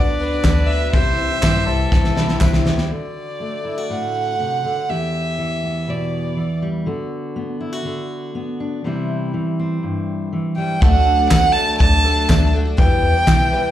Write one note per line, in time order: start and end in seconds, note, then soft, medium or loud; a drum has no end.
0.00 0.33 D2 medium
0.00 0.90 D2 medium
0.00 0.90 D3 medium
0.00 0.43 F#3 loud
0.00 0.19 B3 soft
0.00 0.43 B3 medium
0.00 0.44 B3 loud
0.00 0.20 D4 soft
0.00 0.44 D4 medium
0.00 0.93 D4 medium
0.00 0.19 F#4 medium
0.00 0.19 B4 loud
0.00 0.44 B4 medium
0.00 0.89 B4 medium
0.00 0.45 D5 loud
0.00 0.68 D5 medium
0.00 0.95 E5 medium
0.19 0.32 D3 medium
0.19 0.32 B3 medium
0.19 0.32 D4 medium
0.19 0.31 F#4 medium
0.19 0.94 B4 medium
0.32 0.44 B3 soft
0.32 0.45 D4 soft
0.32 0.44 F#4 soft
0.43 0.82 D2 loud
0.43 0.68 D3 medium
0.43 0.75 F#3 medium
0.43 0.75 B3 medium
0.43 0.94 B3 medium
0.43 0.69 B3 medium
0.43 0.75 D4 medium
0.43 0.70 D4 medium
0.43 0.70 F#4 medium
0.43 0.76 B4 medium
0.43 0.76 D5 medium
0.43 kick medium
0.43 snare loud
0.43 clap medium
0.43 tambourine medium
0.67 0.81 D3 medium
0.67 0.82 B3 medium
0.67 0.91 E5 medium
0.71 0.82 D4 medium
0.71 0.80 F#4 medium
0.81 0.94 B3 soft
0.81 0.94 D4 medium
0.81 0.93 F#4 medium
0.92 1.13 C2 medium
0.92 2.87 C2 medium
0.92 1.30 C3 medium
0.92 2.87 C3 medium
0.92 1.31 E3 medium
0.92 1.25 G3 loud
0.92 1.31 G3 medium
0.92 1.25 C4 medium
0.92 1.25 E4 medium
0.92 1.30 E4 loud
0.92 1.28 G4 medium
0.92 1.39 C5 loud
0.92 1.25 C5 loud
0.92 2.36 E5 loud
0.92 1.26 E5 loud
0.92 kick loud
1.18 1.27 C2 medium
1.18 1.90 C4 medium
1.30 1.42 G3 soft
1.30 1.43 E4 soft
1.30 1.42 G4 medium
1.41 1.62 G2 loud
1.41 1.67 C3 medium
1.41 1.66 E3 medium
1.41 1.58 G3 medium
1.41 1.67 G3 medium
1.41 1.58 C4 medium
1.41 2.15 E4 medium
1.41 1.59 E4 medium
1.41 1.68 E4 medium
1.41 1.68 G4 medium
1.41 1.65 C5 loud
1.41 1.59 C5 medium
1.41 1.59 E5 medium
1.41 kick medium
1.41 snare loud
1.41 clap medium
1.41 tambourine medium
1.66 1.86 C2 medium
1.66 2.14 E3 medium
1.66 1.82 G3 medium
1.66 2.16 G3 medium
1.66 1.83 C4 medium
1.66 1.83 E4 medium
1.66 2.17 E4 medium
1.66 2.36 A4 loud
1.66 2.40 C5 medium
1.66 1.83 C5 medium
1.66 1.83 E5 medium
1.70 2.18 G4 medium
1.91 2.11 C2 loud
1.91 2.23 G3 medium
1.91 2.23 C4 medium
1.91 2.64 C4 medium
1.91 2.23 E4 medium
1.91 2.23 C5 medium
1.91 2.24 E5 medium
1.91 kick loud
1.91 snare medium
2.04 snare medium
2.15 2.38 B1 medium
2.15 2.40 E3 medium
2.15 2.40 G3 medium
2.15 2.90 E4 medium
2.15 2.41 E4 medium
2.15 2.41 G4 medium
2.15 snare medium
2.28 snare medium
2.40 2.63 C2 medium
2.40 2.65 C3 medium
2.40 2.63 E3 medium
2.40 2.72 G3 medium
2.40 2.65 G3 medium
2.40 2.72 C4 medium
2.40 2.72 E4 medium
2.40 2.66 E4 loud
2.40 2.66 G4 medium
2.40 2.51 B4 medium
2.40 2.90 C5 medium
2.40 2.72 C5 medium
2.40 2.73 E5 medium
2.40 kick medium
2.40 snare medium
2.40 clap medium
2.40 tambourine medium
2.53 snare medium
2.65 2.88 D2 medium
2.65 2.77 E3 medium
2.65 2.78 G3 medium
2.65 2.90 C4 medium
2.65 2.78 E4 medium
2.65 2.88 G4 medium
2.65 2.76 G4 medium
2.65 snare medium
2.77 2.92 G3 soft
2.77 2.91 E4 medium
2.77 2.90 G4 medium
2.77 snare medium
2.90 4.63 D3 soft
2.90 3.64 F#4 soft
2.90 3.92 D5 medium
3.40 4.85 A3 soft
3.65 3.78 E4 soft
3.78 4.89 F#4 soft
3.90 4.39 A2 soft
3.90 4.91 F#5 medium
4.40 4.64 C3 soft
4.64 4.89 D3 soft
4.89 6.87 E2 medium
4.89 6.84 G4 soft
4.89 5.91 E5 medium
5.38 6.35 E3 soft
5.64 7.35 B3 soft
5.88 6.37 B2 soft
5.88 6.63 D5 medium
6.37 6.83 E3 soft
6.62 6.87 G3 soft
6.86 7.84 D3 soft
6.86 7.60 F#4 soft
7.36 8.34 B3 soft
7.61 7.73 E4 medium
7.73 8.84 F#4 soft
7.85 8.84 D3 soft
8.35 8.81 B3 soft
8.60 8.82 D4 soft
8.84 9.34 C3 medium
8.84 9.32 E3 soft
8.84 10.57 G3 soft
8.84 9.58 C4 soft
8.84 10.83 E4 soft
9.33 10.31 E3 soft
9.59 10.79 C4 soft
9.83 10.79 G2 soft
10.33 10.79 E3 soft
10.56 10.82 G3 soft
10.56 10.82 G5 medium
10.81 11.20 D2 loud
10.81 12.75 D2 medium
10.81 11.19 D3 medium
10.81 12.75 D3 medium
10.81 11.13 F#3 loud
10.81 11.54 A3 loud
10.81 11.19 A3 medium
10.81 11.14 A3 medium
10.81 11.14 D4 loud
10.81 11.19 D4 medium
10.81 11.18 F#4 loud
10.81 11.14 A4 medium
10.81 11.14 D5 loud
10.81 11.28 F#5 loud
10.81 kick loud
11.07 11.79 D4 medium
11.19 11.31 A3 soft
11.19 11.32 D4 soft
11.19 11.31 F#4 medium
11.29 11.69 D2 loud
11.29 11.54 D3 medium
11.29 11.46 F#3 medium
11.29 11.47 A3 medium
11.29 11.55 A3 medium
11.29 11.47 D4 medium
11.29 11.56 D4 medium
11.29 12.03 A4 loud
11.29 11.47 A4 medium
11.29 11.47 D5 medium
11.29 11.54 F#5 loud
11.29 kick medium
11.29 snare loud
11.29 clap loud
11.29 tambourine loud
11.34 11.57 F#4 loud
11.52 12.03 D3 medium
11.52 11.71 F#3 medium
11.52 11.71 A3 medium
11.52 12.28 A3 medium
11.52 12.04 A3 medium
11.52 11.71 D4 medium
11.52 11.71 A4 medium
11.52 11.72 D5 medium
11.52 11.77 A5 loud
11.58 12.05 D4 medium
11.58 12.06 F#4 medium
11.77 12.18 D2 loud
11.77 12.11 F#3 medium
11.77 12.11 A3 medium
11.77 12.11 D4 medium
11.77 12.78 D4 loud
11.77 12.12 A4 medium
11.77 12.12 D5 medium
11.77 12.48 A5 loud
11.77 kick loud
12.04 12.27 D3 medium
12.04 12.28 A3 medium
12.04 12.29 D4 medium
12.04 12.30 F#4 medium
12.04 12.78 A4 loud
12.28 12.67 D2 loud
12.28 12.52 D3 medium
12.28 12.60 F#3 medium
12.28 12.60 A3 medium
12.28 12.78 A3 medium
12.28 12.53 A3 medium
12.28 12.60 D4 medium
12.28 12.54 D4 medium
12.28 12.55 F#4 loud
12.28 12.61 A4 medium
12.28 12.61 D5 medium
12.28 kick medium
12.28 snare loud
12.28 clap loud
12.28 tambourine loud
12.53 12.66 D3 medium
12.53 12.66 A3 medium
12.53 12.66 D4 medium
12.53 12.64 F#4 medium
12.65 12.78 A3 soft
12.65 12.79 D4 medium
12.65 12.78 F#4 medium
12.77 13.15 E2 medium
12.77 12.97 E2 medium
12.77 13.71 E2 medium
12.77 13.15 B2 medium
12.77 13.15 E3 medium
12.77 13.71 E3 medium
12.77 13.09 G3 loud
12.77 13.15 G3 medium
12.77 13.09 B3 loud
12.77 13.14 B3 medium
12.77 13.10 E4 loud
12.77 13.13 G4 medium
12.77 13.10 B4 loud
12.77 13.10 E5 loud
12.77 13.71 G5 loud
12.77 kick loud
13.02 13.12 E2 medium
13.02 13.71 B3 medium
13.14 13.26 E3 soft
13.14 13.27 G3 medium
13.14 13.27 B3 soft
13.14 13.27 G4 medium
13.26 13.46 B1 loud
13.26 13.51 E2 medium
13.26 13.52 B2 medium
13.26 13.49 E3 medium
13.26 13.43 G3 medium
13.26 13.51 G3 loud
13.26 13.43 B3 medium
13.26 13.52 B3 medium
13.26 13.71 E4 loud
13.26 13.43 E4 medium
13.26 13.53 G4 medium
13.26 13.44 E5 medium
13.26 kick medium
13.26 snare loud
13.26 clap loud
13.26 tambourine loud
13.50 13.71 E2 medium
13.50 13.71 E3 medium
13.50 13.67 G3 medium
13.50 13.71 G3 medium
13.50 13.67 B3 medium
13.50 13.71 B3 medium
13.50 13.68 E4 medium
13.50 13.71 G4 medium
13.50 13.71 B4 loud
13.50 13.68 B4 medium
13.50 13.68 E5 medium